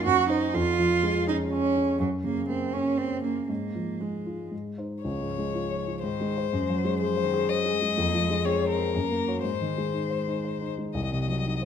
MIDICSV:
0, 0, Header, 1, 4, 480
1, 0, Start_track
1, 0, Key_signature, -5, "major"
1, 0, Tempo, 485437
1, 534, Time_signature, 3, 2, 24, 8
1, 2940, Tempo, 513699
1, 5340, Tempo, 485437
1, 8700, Tempo, 500835
1, 11297, End_track
2, 0, Start_track
2, 0, Title_t, "Violin"
2, 0, Program_c, 0, 40
2, 4866, Note_on_c, 0, 73, 36
2, 5784, Note_off_c, 0, 73, 0
2, 5822, Note_on_c, 0, 72, 40
2, 6770, Note_off_c, 0, 72, 0
2, 6791, Note_on_c, 0, 72, 52
2, 7267, Note_on_c, 0, 75, 57
2, 7282, Note_off_c, 0, 72, 0
2, 8217, Note_on_c, 0, 73, 53
2, 8232, Note_off_c, 0, 75, 0
2, 8450, Note_off_c, 0, 73, 0
2, 8456, Note_on_c, 0, 70, 50
2, 9161, Note_off_c, 0, 70, 0
2, 9175, Note_on_c, 0, 72, 41
2, 10407, Note_off_c, 0, 72, 0
2, 10627, Note_on_c, 0, 75, 43
2, 11297, Note_off_c, 0, 75, 0
2, 11297, End_track
3, 0, Start_track
3, 0, Title_t, "Grand piano"
3, 0, Program_c, 1, 0
3, 0, Control_c, 1, 64, 127
3, 56, Note_on_c, 1, 42, 56
3, 80, Control_c, 1, 64, 0
3, 210, Control_c, 1, 64, 127
3, 290, Note_on_c, 1, 63, 41
3, 292, Note_on_c, 1, 72, 46
3, 507, Note_off_c, 1, 63, 0
3, 508, Note_off_c, 1, 72, 0
3, 518, Note_off_c, 1, 42, 0
3, 532, Note_on_c, 1, 41, 57
3, 555, Control_c, 1, 64, 0
3, 739, Control_c, 1, 64, 127
3, 775, Note_on_c, 1, 53, 47
3, 1018, Note_on_c, 1, 56, 41
3, 1161, Note_off_c, 1, 53, 0
3, 1257, Note_on_c, 1, 61, 46
3, 1402, Note_off_c, 1, 56, 0
3, 1505, Note_on_c, 1, 73, 42
3, 1638, Note_off_c, 1, 61, 0
3, 1737, Note_on_c, 1, 61, 41
3, 1877, Note_off_c, 1, 73, 0
3, 1927, Note_off_c, 1, 41, 0
3, 1970, Note_off_c, 1, 61, 0
3, 1972, Note_on_c, 1, 42, 49
3, 1986, Control_c, 1, 64, 0
3, 2140, Control_c, 1, 64, 127
3, 2216, Note_on_c, 1, 49, 40
3, 2461, Note_on_c, 1, 58, 34
3, 2602, Note_off_c, 1, 49, 0
3, 2698, Note_on_c, 1, 61, 37
3, 2847, Note_off_c, 1, 58, 0
3, 2944, Note_on_c, 1, 73, 30
3, 3084, Note_off_c, 1, 61, 0
3, 3178, Note_on_c, 1, 61, 30
3, 3324, Note_off_c, 1, 73, 0
3, 3385, Note_off_c, 1, 42, 0
3, 3420, Note_off_c, 1, 61, 0
3, 3425, Note_on_c, 1, 44, 38
3, 3441, Control_c, 1, 64, 0
3, 3580, Control_c, 1, 64, 127
3, 3664, Note_on_c, 1, 53, 29
3, 3908, Note_on_c, 1, 56, 28
3, 4047, Note_off_c, 1, 53, 0
3, 4146, Note_on_c, 1, 65, 28
3, 4289, Note_off_c, 1, 56, 0
3, 4357, Note_off_c, 1, 44, 0
3, 4378, Note_on_c, 1, 44, 31
3, 4385, Note_off_c, 1, 65, 0
3, 4404, Control_c, 1, 64, 0
3, 4554, Control_c, 1, 64, 127
3, 4626, Note_on_c, 1, 63, 25
3, 4629, Note_on_c, 1, 72, 26
3, 4844, Note_off_c, 1, 63, 0
3, 4845, Note_off_c, 1, 72, 0
3, 4851, Note_off_c, 1, 44, 0
3, 4874, Note_on_c, 1, 37, 42
3, 4888, Control_c, 1, 64, 0
3, 5031, Note_on_c, 1, 44, 32
3, 5058, Control_c, 1, 64, 127
3, 5192, Note_on_c, 1, 56, 36
3, 5280, Note_off_c, 1, 44, 0
3, 5345, Note_on_c, 1, 65, 31
3, 5442, Note_off_c, 1, 56, 0
3, 5509, Note_on_c, 1, 73, 32
3, 5602, Note_off_c, 1, 65, 0
3, 5668, Note_on_c, 1, 65, 31
3, 5763, Note_off_c, 1, 73, 0
3, 5798, Note_off_c, 1, 37, 0
3, 5826, Note_off_c, 1, 65, 0
3, 5827, Note_on_c, 1, 44, 40
3, 5843, Control_c, 1, 64, 0
3, 5998, Note_on_c, 1, 56, 36
3, 6016, Control_c, 1, 64, 127
3, 6161, Note_on_c, 1, 68, 36
3, 6163, Note_on_c, 1, 72, 41
3, 6249, Note_off_c, 1, 56, 0
3, 6294, Note_off_c, 1, 44, 0
3, 6300, Note_off_c, 1, 68, 0
3, 6301, Note_off_c, 1, 72, 0
3, 6314, Note_on_c, 1, 42, 49
3, 6325, Control_c, 1, 64, 0
3, 6479, Note_on_c, 1, 54, 40
3, 6512, Control_c, 1, 64, 127
3, 6630, Note_on_c, 1, 56, 43
3, 6731, Note_off_c, 1, 54, 0
3, 6797, Note_on_c, 1, 68, 37
3, 6886, Note_off_c, 1, 56, 0
3, 6948, Note_on_c, 1, 72, 45
3, 7049, Note_off_c, 1, 68, 0
3, 7113, Note_on_c, 1, 68, 48
3, 7205, Note_off_c, 1, 72, 0
3, 7278, Note_on_c, 1, 72, 44
3, 7365, Note_off_c, 1, 68, 0
3, 7433, Note_on_c, 1, 68, 51
3, 7526, Note_off_c, 1, 72, 0
3, 7594, Note_on_c, 1, 56, 46
3, 7682, Note_off_c, 1, 68, 0
3, 7706, Note_off_c, 1, 42, 0
3, 7747, Note_off_c, 1, 56, 0
3, 7749, Note_on_c, 1, 41, 57
3, 7761, Control_c, 1, 64, 0
3, 7904, Note_on_c, 1, 53, 49
3, 7924, Control_c, 1, 64, 127
3, 8068, Note_on_c, 1, 56, 49
3, 8156, Note_off_c, 1, 53, 0
3, 8226, Note_on_c, 1, 68, 40
3, 8319, Note_off_c, 1, 56, 0
3, 8382, Note_on_c, 1, 73, 44
3, 8479, Note_off_c, 1, 68, 0
3, 8549, Note_on_c, 1, 68, 40
3, 8639, Note_off_c, 1, 73, 0
3, 8676, Note_off_c, 1, 41, 0
3, 8706, Note_off_c, 1, 68, 0
3, 8710, Note_on_c, 1, 42, 44
3, 8721, Control_c, 1, 64, 0
3, 8855, Control_c, 1, 64, 127
3, 8866, Note_on_c, 1, 58, 39
3, 9024, Note_on_c, 1, 73, 33
3, 9025, Note_on_c, 1, 66, 33
3, 9116, Note_off_c, 1, 58, 0
3, 9165, Note_off_c, 1, 66, 0
3, 9165, Note_off_c, 1, 73, 0
3, 9167, Note_off_c, 1, 42, 0
3, 9179, Note_on_c, 1, 44, 43
3, 9196, Control_c, 1, 64, 0
3, 9339, Note_on_c, 1, 51, 34
3, 9357, Control_c, 1, 64, 127
3, 9501, Note_on_c, 1, 56, 34
3, 9597, Note_off_c, 1, 51, 0
3, 9653, Note_on_c, 1, 63, 29
3, 9759, Note_off_c, 1, 56, 0
3, 9813, Note_on_c, 1, 72, 32
3, 9915, Note_off_c, 1, 63, 0
3, 9981, Note_on_c, 1, 63, 31
3, 10076, Note_off_c, 1, 72, 0
3, 10139, Note_on_c, 1, 72, 28
3, 10240, Note_off_c, 1, 63, 0
3, 10301, Note_on_c, 1, 63, 32
3, 10401, Note_off_c, 1, 72, 0
3, 10464, Note_on_c, 1, 56, 32
3, 10562, Note_off_c, 1, 63, 0
3, 10592, Note_off_c, 1, 44, 0
3, 10620, Note_on_c, 1, 36, 42
3, 10628, Note_off_c, 1, 56, 0
3, 10648, Control_c, 1, 64, 0
3, 10786, Control_c, 1, 64, 127
3, 10792, Note_on_c, 1, 48, 35
3, 10945, Note_on_c, 1, 54, 34
3, 11046, Note_off_c, 1, 48, 0
3, 11106, Note_on_c, 1, 63, 32
3, 11199, Note_off_c, 1, 54, 0
3, 11264, Note_on_c, 1, 72, 36
3, 11297, Note_off_c, 1, 36, 0
3, 11297, Note_off_c, 1, 63, 0
3, 11297, Note_off_c, 1, 72, 0
3, 11297, End_track
4, 0, Start_track
4, 0, Title_t, "Cello"
4, 0, Program_c, 2, 42
4, 55, Note_on_c, 2, 66, 83
4, 289, Note_off_c, 2, 66, 0
4, 297, Note_on_c, 2, 63, 72
4, 538, Note_on_c, 2, 65, 83
4, 552, Note_off_c, 2, 63, 0
4, 1258, Note_off_c, 2, 65, 0
4, 1267, Note_on_c, 2, 63, 70
4, 1346, Note_off_c, 2, 63, 0
4, 1503, Note_on_c, 2, 61, 72
4, 1961, Note_off_c, 2, 61, 0
4, 1980, Note_on_c, 2, 54, 54
4, 2059, Note_off_c, 2, 54, 0
4, 2213, Note_on_c, 2, 58, 65
4, 2449, Note_off_c, 2, 58, 0
4, 2461, Note_on_c, 2, 60, 58
4, 2703, Note_on_c, 2, 61, 60
4, 2718, Note_off_c, 2, 60, 0
4, 2944, Note_on_c, 2, 60, 61
4, 2958, Note_off_c, 2, 61, 0
4, 3179, Note_off_c, 2, 60, 0
4, 3185, Note_on_c, 2, 58, 48
4, 3414, Note_off_c, 2, 58, 0
4, 3420, Note_on_c, 2, 58, 46
4, 3904, Note_on_c, 2, 56, 35
4, 3918, Note_off_c, 2, 58, 0
4, 4383, Note_off_c, 2, 56, 0
4, 4870, Note_on_c, 2, 53, 38
4, 5825, Note_on_c, 2, 51, 44
4, 5839, Note_off_c, 2, 53, 0
4, 6297, Note_off_c, 2, 51, 0
4, 6303, Note_on_c, 2, 56, 47
4, 6543, Note_on_c, 2, 54, 54
4, 6558, Note_off_c, 2, 56, 0
4, 6782, Note_on_c, 2, 53, 51
4, 6797, Note_off_c, 2, 54, 0
4, 7015, Note_on_c, 2, 51, 52
4, 7030, Note_off_c, 2, 53, 0
4, 7261, Note_on_c, 2, 54, 59
4, 7276, Note_off_c, 2, 51, 0
4, 7499, Note_on_c, 2, 56, 54
4, 7514, Note_off_c, 2, 54, 0
4, 7738, Note_on_c, 2, 58, 57
4, 7752, Note_off_c, 2, 56, 0
4, 7978, Note_on_c, 2, 56, 60
4, 7993, Note_off_c, 2, 58, 0
4, 8214, Note_on_c, 2, 60, 52
4, 8229, Note_off_c, 2, 56, 0
4, 8701, Note_on_c, 2, 58, 47
4, 8716, Note_off_c, 2, 60, 0
4, 9173, Note_off_c, 2, 58, 0
4, 9179, Note_on_c, 2, 56, 38
4, 10409, Note_off_c, 2, 56, 0
4, 10628, Note_on_c, 2, 54, 40
4, 11297, Note_off_c, 2, 54, 0
4, 11297, End_track
0, 0, End_of_file